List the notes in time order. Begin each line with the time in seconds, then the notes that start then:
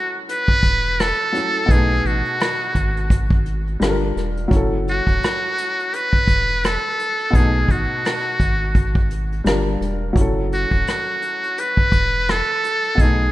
Already playing: F#3 C#4 E4 F#4 A4
0.29 B4, closed hi-hat
0.48 kick
0.63 E1, kick, closed hi-hat
0.99 A4, cross-stick, closed hi-hat
1.32 F#3 C#4 E4, cross-stick, closed hi-hat
1.37 A4
1.66 B1 B2 B3, kick
1.70 D#4 G#4, closed hi-hat
1.74 A3
2.05 A1 F#4, closed hi-hat
2.25 closed hi-hat
2.40 cross-stick, closed hi-hat
2.75 G#1, kick, closed hi-hat
2.97 closed hi-hat
3.10 kick, closed hi-hat
3.30 kick
3.46 closed hi-hat
3.67 closed hi-hat
3.80 G1 G3 D4 F4, cross-stick, closed hi-hat
3.84 A4
3.90 A#4
4.16 E1, cross-stick, closed hi-hat
4.37 closed hi-hat
4.48 F#1 F#3 C#4, kick
4.52 E4 A4, closed hi-hat
4.88 F#4, closed hi-hat
5.07 E1, kick
5.23 cross-stick, closed hi-hat
5.58 closed hi-hat
5.79 closed hi-hat
5.94 B4, closed hi-hat
6.13 kick
6.28 E1, kick, closed hi-hat
6.50 closed hi-hat
6.64 A4, cross-stick, closed hi-hat
7.00 closed hi-hat
7.19 closed hi-hat
7.30 B1 B2 B3, kick
7.35 A3 D#4 G#4, closed hi-hat
7.69 A1 F#4, kick, closed hi-hat
8.05 cross-stick, closed hi-hat
8.40 G#1, kick, closed hi-hat
8.75 kick, closed hi-hat
8.95 kick
9.11 closed hi-hat
9.32 closed hi-hat
9.44 G1 G3 D4 F4, cross-stick, closed hi-hat
9.48 A#4
9.81 E1, closed hi-hat
10.13 F#1 F#3 C#4, kick
10.17 E4, closed hi-hat
10.21 A4
10.52 F#4, closed hi-hat
10.71 E1, kick
10.87 cross-stick, closed hi-hat
11.22 closed hi-hat
11.44 closed hi-hat
11.58 B4, closed hi-hat
11.77 kick
11.92 E1, kick, closed hi-hat
12.28 A4, cross-stick, closed hi-hat
12.64 closed hi-hat
12.84 closed hi-hat
12.95 B1 B2 B3, kick
12.99 A3 D#4 G#4, closed hi-hat